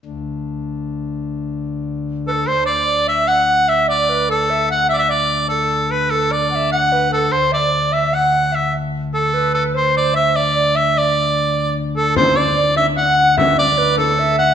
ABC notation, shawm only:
X:1
M:6/8
L:1/16
Q:3/8=99
K:Dmix
V:1 name="Shawm"
z12 | z8 z2 A2 | c2 d4 e2 f4 | e2 d4 A4 f2 |
e/2 d/2 e d4 A4 B2 | A2 d4 f4 A2 | c2 d4 e2 f4 | e2 z4 A4 A2 |
c2 d2 e2 d4 e2 | d8 z2 A2 | c2 d4 e2 f4 | e2 d4 A4 f2 |]